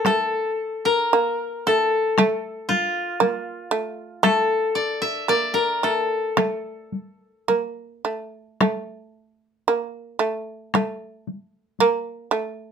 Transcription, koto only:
\new Staff \with { instrumentName = "Koto" } { \time 2/4 \tempo 4 = 56 a'8. bes'8. a'8~ | a'8 f'4 r8 | a'8 d''16 e''16 d''16 bes'16 a'8~ | a'8 r4. |
r2 | r2 | }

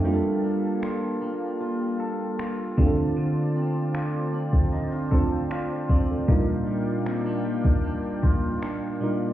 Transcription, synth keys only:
\new Staff \with { instrumentName = "Synth keys" } { \time 4/4 \key g \minor \tempo 4 = 77 << { r1 | r2 r8 a''16 g''16 <a' d'' f''>16 <c'' f''>16 d''16 <a' d''>16~ | <a' d''>16 r2. r8. | } \\ { <g bes d' f' g' a'>2 r4. <a c' d' f' g' a'>8~ | <a c' d' f' g' a'>4. r4 <a c' d' f' c''>4 r8 | <bes, g d' ees' f' bes'>2 r4. <bes, g d' ees' f' bes'>8 | } >> }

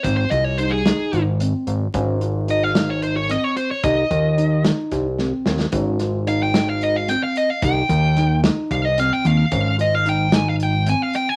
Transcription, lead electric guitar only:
\new Staff \with { instrumentName = "Lead electric guitar" } { \time 7/8 \key des \lydian \tempo 4 = 111 c''16 c''16 ees''16 des''16 c''16 aes'4 r4 r16 | r4 ees''16 f''8 des''16 c''16 des''16 ees''16 des''16 c''16 des''16 | ees''4. r2 | r4 f''16 g''8 f''16 ees''16 f''16 g''16 f''16 ees''16 f''16 |
g''4. r8 f''16 ees''16 f''16 g''16 f''8~ | f''8 ees''16 f''16 g''8 aes''16 f''16 g''8 aes''16 f''16 g''16 aes''16 | }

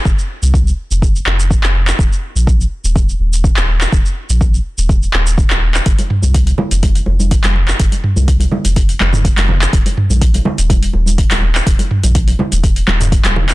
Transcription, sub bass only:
\new Staff \with { instrumentName = "Sub bass" } { \clef bass \time 4/4 \key ees \mixolydian \tempo 4 = 124 f,,16 r8 c,8 r8 f,,8 r16 f,,8 r16 f,,8 r16 | ees,,16 r8 bes,,8 r8 ees,,8 r16 ees,,8 r16 ees,,8 r16 | ees,,16 r8 bes,,8 r8 ees,,8 r16 ees,,8 r16 ees,,8 r16 | f,,16 r8 c,8 r8 f,,8 r16 f,,8 r16 f,,8 r16 |
f,,16 r8 c,8 r8 f,,8 r16 f,,8 r16 f,,8 r16 | ees,,16 r8 bes,,8 r8 ees,,8 r16 ees,,8 r16 ees,,8 r16 | ees,,16 r8 bes,,8 r8 ees,,8 r16 ees,,8 r16 ees,,8 r16 | }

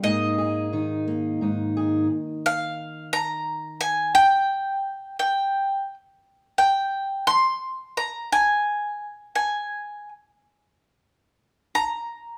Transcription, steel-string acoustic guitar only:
\new Staff \with { instrumentName = "Steel-string acoustic guitar" } { \time 6/8 \key aes \lydian \tempo 4. = 58 << { <bes ees' aes'>8 aes'8 ees'8 bes8 ees'8 aes'8 | r2. | r2. | r2. |
r2. | r2. | } \\ { aes,4 ees4 aes,4 | r2. | r2. | r2. |
r2. | r2. | } >> }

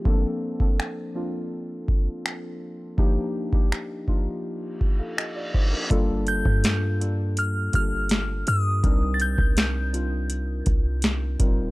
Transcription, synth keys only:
\new Staff \with { instrumentName = "Synth keys" } { \time 4/4 \key g \minor \tempo 4 = 82 << { r1 | r2 r8. <a' f''>16 <g' ees''>16 <f' d''>16 <ees' c''>16 <d' bes'>16~ | <d' bes'>16 r2. r8. | r1 | } \\ { <f bes c' d' a'>8. <f bes c' d' a'>8. <f bes c' d' f'>4.~ <f bes c' d' f'>16 r8. | <f bes d' ees' g'>8. <f bes d' ees' g'>8. <f bes d' ees' f'>4 r4. | <g bes d' f' a'>4~ <g bes d' f' a'>16 r16 <g bes d' f' a'>4 <g bes d' f' g' a'>4~ <g bes d' f' g' a'>16 r16 | <g c' d' ees' bes'>4~ <g c' d' ees' bes'>16 r16 <g c' d' ees' f'>4.~ <g c' d' ees' f'>16 r16 <g c' ees' f' bes'>8 | } >> }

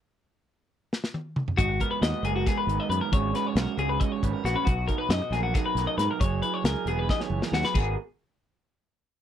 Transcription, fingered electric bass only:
\new Staff \with { instrumentName = "Fingered electric bass" } { \clef bass \time 7/8 \key gis \minor \tempo 4 = 136 r2. r8 | gis,,8 r8 dis,16 r16 fis,,8 r8 gis,,16 r16 fis,16 r16 | gis,,8 r8 b,,16 r16 cis,8 r8 gis,,16 r16 ais,,16 r16 | b,,8 r8 fis,16 r16 ais,,8 r8 b,,16 r16 gis,16 r16 |
fis,,8 r8 cis,16 r16 e,,8 r8 fis,,16 r16 dis,16 r16 | gis,,8 r2. | }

